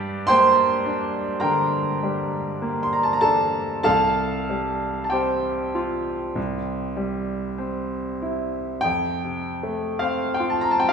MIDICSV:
0, 0, Header, 1, 2, 480
1, 0, Start_track
1, 0, Key_signature, -1, "major"
1, 0, Tempo, 1136364
1, 606, Tempo, 1188119
1, 1086, Tempo, 1244813
1, 1563, Time_signature, 4, 2, 24, 8
1, 3486, Tempo, 1156069
1, 4350, End_track
2, 0, Start_track
2, 0, Title_t, "Grand piano"
2, 0, Program_c, 0, 0
2, 0, Control_c, 0, 64, 127
2, 0, Note_on_c, 0, 43, 71
2, 0, Note_on_c, 0, 55, 54
2, 0, Note_on_c, 0, 67, 82
2, 0, Note_on_c, 0, 74, 75
2, 0, Note_on_c, 0, 79, 99
2, 106, Note_off_c, 0, 67, 0
2, 107, Note_off_c, 0, 74, 0
2, 112, Note_off_c, 0, 79, 0
2, 113, Note_on_c, 0, 84, 115
2, 119, Note_on_c, 0, 79, 81
2, 120, Note_on_c, 0, 72, 86
2, 127, Note_on_c, 0, 58, 49
2, 272, Note_off_c, 0, 55, 0
2, 364, Note_on_c, 0, 62, 51
2, 507, Note_off_c, 0, 58, 0
2, 583, Note_off_c, 0, 79, 0
2, 584, Note_off_c, 0, 72, 0
2, 585, Note_off_c, 0, 43, 0
2, 591, Note_on_c, 0, 82, 71
2, 594, Note_on_c, 0, 70, 52
2, 595, Note_on_c, 0, 79, 61
2, 597, Note_off_c, 0, 84, 0
2, 601, Note_on_c, 0, 50, 41
2, 746, Note_off_c, 0, 62, 0
2, 847, Note_on_c, 0, 55, 40
2, 987, Note_off_c, 0, 50, 0
2, 1084, Note_on_c, 0, 58, 46
2, 1146, Note_off_c, 0, 70, 0
2, 1146, Note_off_c, 0, 79, 0
2, 1159, Note_off_c, 0, 82, 0
2, 1166, Note_on_c, 0, 84, 68
2, 1204, Note_off_c, 0, 84, 0
2, 1204, Note_on_c, 0, 82, 60
2, 1227, Note_off_c, 0, 55, 0
2, 1243, Note_off_c, 0, 82, 0
2, 1244, Note_on_c, 0, 81, 62
2, 1282, Note_off_c, 0, 81, 0
2, 1282, Note_on_c, 0, 82, 62
2, 1312, Note_on_c, 0, 81, 83
2, 1315, Note_on_c, 0, 69, 55
2, 1321, Note_off_c, 0, 82, 0
2, 1324, Note_on_c, 0, 62, 45
2, 1464, Note_off_c, 0, 58, 0
2, 1544, Note_off_c, 0, 69, 0
2, 1547, Note_off_c, 0, 81, 0
2, 1553, Note_on_c, 0, 81, 88
2, 1556, Note_on_c, 0, 69, 69
2, 1557, Note_on_c, 0, 77, 65
2, 1563, Note_on_c, 0, 36, 52
2, 1564, Note_off_c, 0, 62, 0
2, 1569, Control_c, 0, 64, 0
2, 1649, Control_c, 0, 64, 127
2, 1808, Note_on_c, 0, 55, 40
2, 2003, Note_off_c, 0, 69, 0
2, 2004, Note_off_c, 0, 77, 0
2, 2013, Note_off_c, 0, 81, 0
2, 2019, Note_on_c, 0, 81, 48
2, 2040, Note_on_c, 0, 79, 66
2, 2046, Note_on_c, 0, 72, 47
2, 2047, Note_on_c, 0, 67, 54
2, 2051, Note_off_c, 0, 81, 0
2, 2052, Note_on_c, 0, 60, 42
2, 2197, Note_off_c, 0, 55, 0
2, 2291, Note_on_c, 0, 65, 44
2, 2434, Note_off_c, 0, 60, 0
2, 2513, Note_off_c, 0, 36, 0
2, 2525, Note_on_c, 0, 36, 53
2, 2528, Note_off_c, 0, 65, 0
2, 2536, Control_c, 0, 64, 0
2, 2605, Control_c, 0, 64, 127
2, 2760, Note_on_c, 0, 55, 39
2, 2982, Note_off_c, 0, 67, 0
2, 2982, Note_off_c, 0, 72, 0
2, 2994, Note_off_c, 0, 79, 0
2, 2999, Note_on_c, 0, 60, 41
2, 3143, Note_off_c, 0, 55, 0
2, 3245, Note_on_c, 0, 64, 38
2, 3389, Note_off_c, 0, 60, 0
2, 3466, Note_off_c, 0, 36, 0
2, 3471, Note_on_c, 0, 79, 94
2, 3483, Note_on_c, 0, 41, 56
2, 3484, Note_off_c, 0, 64, 0
2, 3490, Control_c, 0, 64, 0
2, 3563, Control_c, 0, 64, 127
2, 3648, Note_on_c, 0, 48, 37
2, 3812, Note_on_c, 0, 57, 42
2, 3908, Note_off_c, 0, 48, 0
2, 3962, Note_on_c, 0, 77, 63
2, 3966, Note_off_c, 0, 79, 0
2, 3971, Note_on_c, 0, 60, 46
2, 4069, Note_off_c, 0, 57, 0
2, 4107, Note_on_c, 0, 79, 70
2, 4110, Note_off_c, 0, 77, 0
2, 4131, Note_on_c, 0, 65, 35
2, 4171, Note_on_c, 0, 81, 55
2, 4179, Note_off_c, 0, 79, 0
2, 4219, Note_on_c, 0, 82, 72
2, 4224, Note_off_c, 0, 60, 0
2, 4226, Note_off_c, 0, 81, 0
2, 4260, Note_on_c, 0, 81, 64
2, 4264, Note_off_c, 0, 82, 0
2, 4289, Note_on_c, 0, 60, 43
2, 4295, Note_on_c, 0, 79, 71
2, 4300, Note_off_c, 0, 81, 0
2, 4333, Note_on_c, 0, 77, 72
2, 4339, Note_off_c, 0, 79, 0
2, 4350, Note_off_c, 0, 41, 0
2, 4350, Note_off_c, 0, 60, 0
2, 4350, Note_off_c, 0, 65, 0
2, 4350, Note_off_c, 0, 77, 0
2, 4350, End_track
0, 0, End_of_file